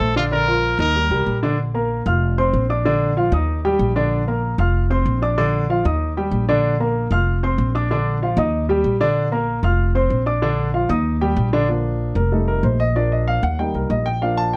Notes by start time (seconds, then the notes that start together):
Already playing: A3 A4 C5
0.00 A#1
0.16 D3 D4 F4 D5
0.32 D3 D4 A#4 D5
0.48 F3 F4 A#4
0.79 D#2 D#3 D#4 A#4 D#5
0.95 G3 G4 A#4
1.10 C2 G3 G4 A#4
1.26 A#1
1.43 D3 D4 D5
1.74 A#3 A#4 A#5
2.06 F1 F4 F5 F6
2.38 C4 C5 C6
2.53 A#1
2.70 D4 D5 D6
2.85 D3 D4 D5
3.17 F3 F4 F5
3.32 D#2 D#4 D#5 D#6
3.65 G3 G4 G5
3.79 A#1
3.96 D3 D4 D5
4.27 A#3 A#4 A#5
4.58 F1 F4 F5 F6
4.90 C4 C5 C6
5.05 A#1
5.22 D4 D5 D6
5.38 D3 D4 D5
5.69 F3 F4 F5
5.85 D#2 D#4 D#5 D#6
6.17 G3 G4 G5
6.31 A#1
6.49 D3 D4 D5
6.80 A#3 A#4 A#5
7.11 F1 F4 F5 F6
7.43 C4 C5 C6
7.58 A#1
7.75 D4 D5 D6
7.91 D3 D4 D5
8.22 F3 F4 F5
8.37 D#2 D#4 D#5 D#6
8.69 G3 G4 G5
8.84 A#1
9.00 D3 D4 D5
9.32 A#3 A#4 A#5
9.63 F1 F4 F5 F6
9.95 C4 C5 C6
10.10 A#1
10.26 D4 D5 D6
10.42 D3 D4 D5
10.74 F3 F4 F5
10.89 D#2 D#4 D#5 D#6
11.21 G3 G4 G5
11.36 A#1
11.53 D3 D4 D5
11.69 F3 A#3 D4
12.15 F1 A#4
12.32 G3 A3 D#4 A4
12.48 A#4
12.63 A#1 C5
12.80 D#5
12.95 F3 A#3 D4 D5
13.12 D#5
13.28 F5
13.43 D#2 F#5
13.58 G3 A#3 D#4 G5
13.74 C2 A#4
13.90 A#1 D#5
14.06 G5
14.21 F3 A#3 D4 F5
14.37 A5
14.53 G5